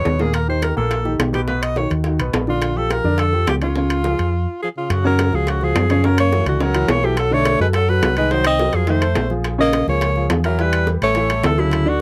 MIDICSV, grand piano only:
0, 0, Header, 1, 2, 480
1, 0, Start_track
1, 0, Tempo, 284495
1, 577, Time_signature, 4, 2, 24, 8
1, 20267, End_track
2, 0, Start_track
2, 0, Title_t, "Grand piano"
2, 0, Program_c, 0, 0
2, 0, Note_on_c, 0, 47, 75
2, 0, Note_on_c, 0, 59, 71
2, 0, Note_on_c, 0, 71, 73
2, 252, Note_off_c, 0, 47, 0
2, 253, Note_off_c, 0, 59, 0
2, 257, Note_off_c, 0, 71, 0
2, 335, Note_on_c, 0, 46, 70
2, 341, Note_on_c, 0, 58, 80
2, 347, Note_on_c, 0, 70, 77
2, 730, Note_off_c, 0, 46, 0
2, 733, Note_off_c, 0, 58, 0
2, 737, Note_off_c, 0, 70, 0
2, 808, Note_on_c, 0, 51, 67
2, 811, Note_on_c, 0, 63, 67
2, 814, Note_on_c, 0, 67, 67
2, 1206, Note_off_c, 0, 51, 0
2, 1208, Note_off_c, 0, 63, 0
2, 1210, Note_off_c, 0, 67, 0
2, 1292, Note_on_c, 0, 46, 82
2, 1295, Note_on_c, 0, 70, 74
2, 1296, Note_on_c, 0, 58, 78
2, 1689, Note_off_c, 0, 46, 0
2, 1691, Note_off_c, 0, 58, 0
2, 1691, Note_off_c, 0, 70, 0
2, 1764, Note_on_c, 0, 51, 58
2, 1772, Note_on_c, 0, 63, 67
2, 1775, Note_on_c, 0, 67, 69
2, 2165, Note_off_c, 0, 51, 0
2, 2169, Note_off_c, 0, 63, 0
2, 2171, Note_off_c, 0, 67, 0
2, 2239, Note_on_c, 0, 47, 77
2, 2244, Note_on_c, 0, 59, 69
2, 2254, Note_on_c, 0, 71, 78
2, 2445, Note_off_c, 0, 47, 0
2, 2448, Note_off_c, 0, 59, 0
2, 2454, Note_off_c, 0, 71, 0
2, 2496, Note_on_c, 0, 47, 75
2, 2500, Note_on_c, 0, 59, 73
2, 2502, Note_on_c, 0, 71, 62
2, 2892, Note_off_c, 0, 47, 0
2, 2895, Note_off_c, 0, 59, 0
2, 2896, Note_off_c, 0, 71, 0
2, 2979, Note_on_c, 0, 63, 56
2, 2983, Note_on_c, 0, 51, 61
2, 2989, Note_on_c, 0, 66, 60
2, 3374, Note_off_c, 0, 63, 0
2, 3376, Note_off_c, 0, 51, 0
2, 3380, Note_off_c, 0, 66, 0
2, 3472, Note_on_c, 0, 51, 65
2, 3475, Note_on_c, 0, 63, 69
2, 3485, Note_on_c, 0, 66, 64
2, 3665, Note_off_c, 0, 51, 0
2, 3667, Note_off_c, 0, 63, 0
2, 3673, Note_off_c, 0, 66, 0
2, 3698, Note_on_c, 0, 47, 73
2, 3699, Note_on_c, 0, 59, 73
2, 3706, Note_on_c, 0, 71, 81
2, 4094, Note_off_c, 0, 47, 0
2, 4094, Note_off_c, 0, 59, 0
2, 4099, Note_off_c, 0, 71, 0
2, 4180, Note_on_c, 0, 50, 72
2, 4188, Note_on_c, 0, 62, 72
2, 4193, Note_on_c, 0, 74, 74
2, 4576, Note_off_c, 0, 50, 0
2, 4580, Note_off_c, 0, 62, 0
2, 4584, Note_off_c, 0, 74, 0
2, 4660, Note_on_c, 0, 53, 68
2, 4668, Note_on_c, 0, 65, 73
2, 4673, Note_on_c, 0, 67, 70
2, 5056, Note_off_c, 0, 53, 0
2, 5061, Note_off_c, 0, 65, 0
2, 5064, Note_off_c, 0, 67, 0
2, 5137, Note_on_c, 0, 62, 76
2, 5138, Note_on_c, 0, 50, 77
2, 5145, Note_on_c, 0, 74, 78
2, 5535, Note_off_c, 0, 50, 0
2, 5535, Note_off_c, 0, 62, 0
2, 5539, Note_off_c, 0, 74, 0
2, 5619, Note_on_c, 0, 53, 70
2, 5627, Note_on_c, 0, 65, 66
2, 5631, Note_on_c, 0, 67, 65
2, 6016, Note_off_c, 0, 53, 0
2, 6021, Note_off_c, 0, 65, 0
2, 6023, Note_off_c, 0, 67, 0
2, 6108, Note_on_c, 0, 49, 85
2, 6108, Note_on_c, 0, 61, 74
2, 6118, Note_on_c, 0, 73, 74
2, 6304, Note_off_c, 0, 49, 0
2, 6305, Note_off_c, 0, 61, 0
2, 6310, Note_off_c, 0, 73, 0
2, 6349, Note_on_c, 0, 49, 66
2, 6353, Note_on_c, 0, 61, 64
2, 6360, Note_on_c, 0, 73, 66
2, 6742, Note_off_c, 0, 49, 0
2, 6744, Note_off_c, 0, 61, 0
2, 6749, Note_off_c, 0, 73, 0
2, 6832, Note_on_c, 0, 53, 57
2, 6837, Note_on_c, 0, 65, 69
2, 6837, Note_on_c, 0, 68, 61
2, 7224, Note_off_c, 0, 53, 0
2, 7227, Note_off_c, 0, 65, 0
2, 7227, Note_off_c, 0, 68, 0
2, 8512, Note_on_c, 0, 49, 88
2, 8523, Note_on_c, 0, 73, 83
2, 8524, Note_on_c, 0, 61, 77
2, 8904, Note_off_c, 0, 49, 0
2, 8911, Note_off_c, 0, 61, 0
2, 8911, Note_off_c, 0, 73, 0
2, 9002, Note_on_c, 0, 53, 68
2, 9007, Note_on_c, 0, 65, 67
2, 9013, Note_on_c, 0, 66, 66
2, 9390, Note_off_c, 0, 53, 0
2, 9393, Note_off_c, 0, 65, 0
2, 9397, Note_off_c, 0, 66, 0
2, 9483, Note_on_c, 0, 53, 72
2, 9484, Note_on_c, 0, 65, 70
2, 9492, Note_on_c, 0, 66, 74
2, 9870, Note_off_c, 0, 53, 0
2, 9871, Note_off_c, 0, 65, 0
2, 9876, Note_off_c, 0, 66, 0
2, 9959, Note_on_c, 0, 49, 85
2, 9969, Note_on_c, 0, 61, 84
2, 9971, Note_on_c, 0, 73, 88
2, 10151, Note_off_c, 0, 49, 0
2, 10157, Note_off_c, 0, 61, 0
2, 10159, Note_off_c, 0, 73, 0
2, 10195, Note_on_c, 0, 49, 81
2, 10200, Note_on_c, 0, 61, 77
2, 10204, Note_on_c, 0, 73, 67
2, 10586, Note_off_c, 0, 49, 0
2, 10589, Note_off_c, 0, 61, 0
2, 10591, Note_off_c, 0, 73, 0
2, 10676, Note_on_c, 0, 52, 68
2, 10680, Note_on_c, 0, 64, 65
2, 10687, Note_on_c, 0, 66, 66
2, 11066, Note_off_c, 0, 52, 0
2, 11069, Note_off_c, 0, 64, 0
2, 11073, Note_off_c, 0, 66, 0
2, 11142, Note_on_c, 0, 49, 76
2, 11150, Note_on_c, 0, 61, 74
2, 11157, Note_on_c, 0, 73, 88
2, 11341, Note_off_c, 0, 49, 0
2, 11346, Note_off_c, 0, 61, 0
2, 11350, Note_off_c, 0, 73, 0
2, 11377, Note_on_c, 0, 52, 77
2, 11381, Note_on_c, 0, 64, 73
2, 11391, Note_on_c, 0, 66, 74
2, 11775, Note_off_c, 0, 52, 0
2, 11777, Note_off_c, 0, 64, 0
2, 11783, Note_off_c, 0, 66, 0
2, 11869, Note_on_c, 0, 54, 68
2, 11875, Note_on_c, 0, 69, 81
2, 11876, Note_on_c, 0, 66, 71
2, 12262, Note_off_c, 0, 54, 0
2, 12265, Note_off_c, 0, 69, 0
2, 12266, Note_off_c, 0, 66, 0
2, 12337, Note_on_c, 0, 50, 91
2, 12341, Note_on_c, 0, 62, 84
2, 12347, Note_on_c, 0, 74, 87
2, 12734, Note_off_c, 0, 50, 0
2, 12737, Note_off_c, 0, 62, 0
2, 12741, Note_off_c, 0, 74, 0
2, 12824, Note_on_c, 0, 54, 64
2, 12827, Note_on_c, 0, 66, 70
2, 12836, Note_on_c, 0, 69, 69
2, 13218, Note_off_c, 0, 54, 0
2, 13221, Note_off_c, 0, 66, 0
2, 13225, Note_off_c, 0, 69, 0
2, 13311, Note_on_c, 0, 54, 69
2, 13316, Note_on_c, 0, 66, 76
2, 13318, Note_on_c, 0, 69, 73
2, 13703, Note_off_c, 0, 54, 0
2, 13705, Note_off_c, 0, 66, 0
2, 13706, Note_off_c, 0, 69, 0
2, 13784, Note_on_c, 0, 51, 77
2, 13793, Note_on_c, 0, 63, 81
2, 13798, Note_on_c, 0, 75, 87
2, 13982, Note_off_c, 0, 51, 0
2, 13987, Note_off_c, 0, 63, 0
2, 13990, Note_off_c, 0, 75, 0
2, 14022, Note_on_c, 0, 51, 79
2, 14031, Note_on_c, 0, 63, 73
2, 14038, Note_on_c, 0, 75, 80
2, 14417, Note_off_c, 0, 51, 0
2, 14422, Note_off_c, 0, 63, 0
2, 14426, Note_off_c, 0, 75, 0
2, 14506, Note_on_c, 0, 54, 64
2, 14514, Note_on_c, 0, 66, 63
2, 14514, Note_on_c, 0, 70, 66
2, 14899, Note_off_c, 0, 54, 0
2, 14904, Note_off_c, 0, 66, 0
2, 14904, Note_off_c, 0, 70, 0
2, 14970, Note_on_c, 0, 51, 89
2, 14979, Note_on_c, 0, 63, 82
2, 14979, Note_on_c, 0, 75, 84
2, 15173, Note_off_c, 0, 51, 0
2, 15178, Note_off_c, 0, 63, 0
2, 15178, Note_off_c, 0, 75, 0
2, 15214, Note_on_c, 0, 57, 73
2, 15216, Note_on_c, 0, 69, 76
2, 15221, Note_on_c, 0, 72, 78
2, 15611, Note_off_c, 0, 57, 0
2, 15613, Note_off_c, 0, 69, 0
2, 15616, Note_off_c, 0, 72, 0
2, 15691, Note_on_c, 0, 53, 70
2, 15694, Note_on_c, 0, 65, 68
2, 15706, Note_on_c, 0, 68, 71
2, 16090, Note_off_c, 0, 53, 0
2, 16091, Note_off_c, 0, 65, 0
2, 16098, Note_off_c, 0, 68, 0
2, 16170, Note_on_c, 0, 49, 86
2, 16175, Note_on_c, 0, 61, 88
2, 16181, Note_on_c, 0, 73, 85
2, 16569, Note_off_c, 0, 49, 0
2, 16571, Note_off_c, 0, 61, 0
2, 16575, Note_off_c, 0, 73, 0
2, 16667, Note_on_c, 0, 53, 69
2, 16673, Note_on_c, 0, 65, 70
2, 16675, Note_on_c, 0, 68, 70
2, 17058, Note_off_c, 0, 53, 0
2, 17062, Note_off_c, 0, 65, 0
2, 17063, Note_off_c, 0, 68, 0
2, 17148, Note_on_c, 0, 53, 64
2, 17155, Note_on_c, 0, 65, 69
2, 17162, Note_on_c, 0, 68, 74
2, 17539, Note_off_c, 0, 53, 0
2, 17543, Note_off_c, 0, 65, 0
2, 17547, Note_off_c, 0, 68, 0
2, 17629, Note_on_c, 0, 52, 83
2, 17635, Note_on_c, 0, 64, 79
2, 17642, Note_on_c, 0, 76, 87
2, 17822, Note_off_c, 0, 52, 0
2, 17826, Note_off_c, 0, 64, 0
2, 17830, Note_off_c, 0, 76, 0
2, 17865, Note_on_c, 0, 52, 71
2, 17873, Note_on_c, 0, 64, 72
2, 17874, Note_on_c, 0, 76, 72
2, 18256, Note_off_c, 0, 52, 0
2, 18261, Note_off_c, 0, 64, 0
2, 18261, Note_off_c, 0, 76, 0
2, 18338, Note_on_c, 0, 55, 66
2, 18343, Note_on_c, 0, 67, 71
2, 18353, Note_on_c, 0, 71, 64
2, 18732, Note_off_c, 0, 55, 0
2, 18735, Note_off_c, 0, 67, 0
2, 18741, Note_off_c, 0, 71, 0
2, 18827, Note_on_c, 0, 52, 84
2, 18835, Note_on_c, 0, 64, 80
2, 18837, Note_on_c, 0, 76, 85
2, 19020, Note_off_c, 0, 52, 0
2, 19025, Note_off_c, 0, 64, 0
2, 19026, Note_off_c, 0, 76, 0
2, 19062, Note_on_c, 0, 55, 71
2, 19071, Note_on_c, 0, 67, 69
2, 19073, Note_on_c, 0, 69, 70
2, 19453, Note_off_c, 0, 55, 0
2, 19459, Note_off_c, 0, 67, 0
2, 19460, Note_off_c, 0, 69, 0
2, 19529, Note_on_c, 0, 54, 78
2, 19536, Note_on_c, 0, 66, 73
2, 19541, Note_on_c, 0, 69, 78
2, 19925, Note_off_c, 0, 54, 0
2, 19930, Note_off_c, 0, 66, 0
2, 19932, Note_off_c, 0, 69, 0
2, 20005, Note_on_c, 0, 50, 81
2, 20008, Note_on_c, 0, 62, 94
2, 20012, Note_on_c, 0, 74, 84
2, 20267, Note_off_c, 0, 50, 0
2, 20267, Note_off_c, 0, 62, 0
2, 20267, Note_off_c, 0, 74, 0
2, 20267, End_track
0, 0, End_of_file